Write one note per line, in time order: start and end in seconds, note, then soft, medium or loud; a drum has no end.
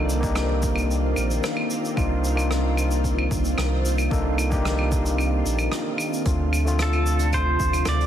0.00 1.13 C2 medium
0.00 6.22 D#3 medium
0.00 0.21 A#3 medium
0.00 6.22 A#3 medium
0.00 6.22 C4 medium
0.00 0.22 D4 medium
0.00 0.23 D#4 medium
0.00 1.98 F4 medium
0.00 6.22 F4 medium
0.00 0.20 A4 medium
0.00 1.93 D5 medium
0.10 shaker medium
0.21 1.93 A#3 medium
0.21 1.93 D4 medium
0.21 1.94 D#4 medium
0.21 1.94 G4 medium
0.21 kick loud
0.21 shaker medium
0.35 cross-stick loud
0.35 claves medium
0.35 shaker soft
0.62 kick loud
0.62 shaker medium
0.76 claves medium
0.76 shaker medium
0.91 shaker soft
1.16 1.39 A#1 medium
1.16 claves medium
1.16 shaker medium
1.31 shaker medium
1.44 cross-stick loud
1.44 shaker soft
1.57 claves medium
1.70 shaker medium
1.85 shaker medium
1.96 3.28 C2 loud
1.96 2.34 A#3 medium
1.96 2.34 D4 medium
1.96 2.34 D#4 medium
1.96 2.34 F4 medium
1.96 kick loud
1.96 claves medium
1.96 shaker soft
2.24 shaker medium
2.35 4.07 A#3 medium
2.35 4.08 D4 medium
2.35 4.08 D#4 medium
2.35 4.09 F4 medium
2.35 claves medium
2.35 shaker medium
2.51 cross-stick medium
2.51 shaker medium
2.77 claves medium
2.77 shaker medium
2.91 shaker medium
3.04 kick medium
3.04 shaker soft
3.19 claves medium
3.31 3.54 C2 loud
3.31 kick loud
3.31 shaker medium
3.45 shaker medium
3.57 4.08 C2 medium
3.57 cross-stick medium
3.57 claves medium
3.57 shaker soft
3.85 shaker medium
3.98 claves medium
3.98 shaker medium
4.11 5.42 C2 medium
4.11 4.48 A#3 medium
4.11 4.48 D4 medium
4.11 4.49 D#4 medium
4.11 4.49 A4 medium
4.11 kick loud
4.11 shaker soft
4.38 claves medium
4.38 shaker medium
4.50 6.22 A#3 medium
4.50 6.22 D4 medium
4.50 6.23 D#4 medium
4.50 6.23 G4 loud
4.50 kick loud
4.50 shaker medium
4.65 cross-stick medium
4.65 shaker medium
4.79 claves medium
4.92 kick loud
4.92 shaker medium
5.06 shaker medium
5.18 claves medium
5.18 shaker soft
5.45 5.68 A#1 medium
5.45 shaker medium
5.59 claves medium
5.59 shaker medium
5.72 cross-stick medium
5.72 shaker soft
5.98 claves medium
5.98 shaker medium
6.13 shaker medium
6.25 7.56 D2 medium
6.25 8.07 C3 medium
6.25 8.07 F3 medium
6.25 6.62 A3 medium
6.25 8.07 A3 medium
6.25 6.63 C4 medium
6.25 8.07 D4 medium
6.25 6.63 D4 medium
6.25 8.07 F4 medium
6.25 6.63 F4 medium
6.25 kick loud
6.25 closed hi-hat medium
6.25 shaker soft
6.53 claves medium
6.53 shaker medium
6.65 8.07 A3 medium
6.65 8.07 C4 medium
6.65 8.07 D4 medium
6.65 8.07 F4 medium
6.65 shaker medium
6.79 7.34 A4 medium
6.79 cross-stick medium
6.79 closed hi-hat medium
6.79 shaker medium
6.93 closed hi-hat soft
6.93 claves medium
7.06 shaker medium
7.19 closed hi-hat medium
7.19 shaker medium
7.33 7.88 C5 medium
7.33 kick medium
7.33 closed hi-hat medium
7.33 claves medium
7.33 shaker soft
7.60 7.82 D2 medium
7.60 kick medium
7.60 shaker medium
7.73 closed hi-hat medium
7.73 claves medium
7.73 shaker medium
7.85 8.07 D2 medium
7.85 8.07 D5 medium
7.85 cross-stick loud
7.85 closed hi-hat medium
7.85 shaker soft
8.01 closed hi-hat soft